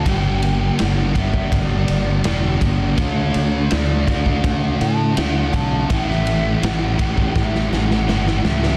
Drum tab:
RD |x-x-x-x-x-x-x-x-|x-x-x-x-x-x-x-x-|x-x-x-x---------|
SD |----o-------o---|----o-o-----o---|-o--o---oooooooo|
BD |o-----ooo-----o-|o-----ooo-----o-|o-----ooo-------|